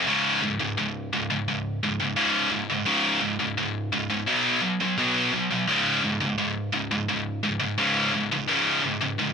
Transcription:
0.07 C#2 G#2 C#3
0.42 C#2 G#2
0.59 C#2 G#2
0.77 C#2 G#2
1.13 C#2 G#2
1.30 C#2 G#2
1.48 C#2 G#2
1.83 C#2 G#2
2.00 C#2 G#2
2.16 C#2 G#2 C#3
2.51 C#2 G#2
2.70 C#2 G#2
2.86 C#2 G#2 C#3
3.21 C#2 G#2
3.39 C#2 G#2
3.57 C#2 G#2
3.92 C#2 G#2
4.10 C#2 G#2
4.27 B2 F#3 B3
4.62 B2 F#3
4.81 B2 F#3
4.98 B2 F#3 B3
5.33 B2 F#3
5.51 B2 F#3
5.67 C#2 G#2 C#3
6.03 C#2 G#2
6.20 C#2 G#2
6.38 C#2 G#2
6.73 C#2 G#2
6.91 C#2 G#2
7.08 C#2 G#2
7.43 C#2 G#2
7.60 C#2 G#2
7.78 C#2 G#2 C#3
8.13 C#2 G#2
8.31 C#2 G#2
8.48 C#2 G#2 C#3
8.83 C#2 G#2
9.01 C#2 G#2
9.18 C#2 G#2

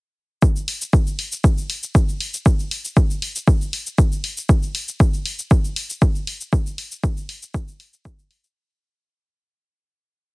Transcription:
0.42 kick, shaker
0.56 shaker
0.68 open hi-hat
0.82 shaker
0.93 kick, shaker
1.07 shaker
1.19 open hi-hat
1.32 shaker
1.44 kick, shaker
1.58 shaker
1.70 open hi-hat
1.83 shaker
1.95 kick, shaker
2.09 shaker
2.21 open hi-hat
2.34 shaker
2.46 kick, shaker
2.60 shaker
2.71 open hi-hat
2.85 shaker
2.97 kick, shaker
3.10 shaker
3.22 open hi-hat
3.36 shaker
3.48 kick, shaker
3.61 shaker
3.73 open hi-hat
3.87 shaker
3.98 kick, shaker
4.12 shaker
4.24 open hi-hat
4.37 shaker
4.49 kick, shaker
4.63 shaker
4.75 open hi-hat
4.88 shaker
5.00 kick, shaker
5.14 shaker
5.26 open hi-hat
5.39 shaker
5.51 kick, shaker
5.64 shaker
5.76 open hi-hat
5.90 shaker
6.02 kick, shaker
6.16 shaker
6.27 open hi-hat
6.41 shaker
6.53 kick, shaker
6.66 shaker
6.78 open hi-hat
6.92 shaker
7.04 kick, shaker
7.17 shaker
7.29 open hi-hat
7.43 shaker
7.54 kick, shaker
7.68 shaker
7.80 open hi-hat
7.93 shaker
8.05 kick, shaker
8.19 shaker
8.31 open hi-hat
8.44 shaker

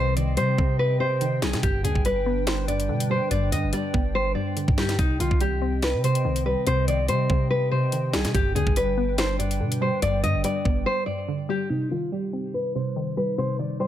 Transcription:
Already playing: C2 C3 D#3 G3 C4 C5 D#5 G5
0.16 D#3 D5, closed hi-hat
0.37 C3 G3 C5, closed hi-hat
0.58 C3 C4, kick
0.79 B4
1.00 C3 C5
1.21 D#3, closed hi-hat
1.42 B1 G3 G#4, snare, closed hi-hat
1.53 C3, snare, closed hi-hat
1.63 G1 G2 G3 D4 G4 B4, kick, closed hi-hat
1.84 D2 D3 G#4, closed hi-hat
1.95 G1, kick
2.05 G3 B4, closed hi-hat
2.26 B3
2.47 C5, snare, closed hi-hat
2.68 G2 D5, closed hi-hat
2.80 closed hi-hat
2.89 B2 D3
3.00 closed hi-hat
3.10 G3 C5
3.31 G1 G2 D5, closed hi-hat
3.52 G2 D3 D#5, closed hi-hat
3.63 G1
3.73 G3 D5, closed hi-hat
3.94 G1 B3, kick
4.15 C5
4.35 G2 D5
4.57 D3, closed hi-hat
4.68 G2, kick
4.78 G3 G4, snare, closed hi-hat
4.89 snare, closed hi-hat
4.99 C2 C3 C4 D#4 D#5, kick, closed hi-hat
5.20 C2 D#3 F4, closed hi-hat
5.31 C2, kick
5.41 G3 G4, closed hi-hat
5.62 C4
5.82 B4, snare, closed hi-hat
5.94 C3
6.04 C3 C5, closed hi-hat
6.15 closed hi-hat
6.25 C2 D#3
6.36 closed hi-hat
6.46 G3 B4
6.67 C2 C3 C5, closed hi-hat
6.88 D#3 D5, closed hi-hat
7.08 C3 G3 C5, closed hi-hat
7.30 C3 C4, kick
7.50 B4
7.71 C3 C5
7.92 D#3, closed hi-hat
8.13 B1 G3 G#4, snare, closed hi-hat
8.25 C3, snare, closed hi-hat
8.34 G1 G2 G3 D4 G4 B4 G5, kick, closed hi-hat
8.55 D2 D3 G#4, closed hi-hat
8.67 G1, kick
8.76 G3 B4, closed hi-hat
8.97 B3
9.18 C5, snare, closed hi-hat
9.39 G2 D5, closed hi-hat
9.51 closed hi-hat
9.60 B2 D3
9.72 closed hi-hat
9.81 G3 C5
10.02 G1 G2 D5, closed hi-hat
10.23 G2 D3 D#5, closed hi-hat
10.34 G1
10.44 G3 D5, closed hi-hat
10.65 G1 B3, kick
10.86 C5
11.06 G2 D5
11.28 D3
11.49 G3 G4
11.70 C3 G3 D#4 C5
11.91 D#3 F4
12.12 G3 G4
12.33 C4
12.54 B4
12.75 C3 C5
12.96 D#3
13.17 G3 B4
13.38 C3 C5
13.59 D#3 D5
13.80 G3 C5

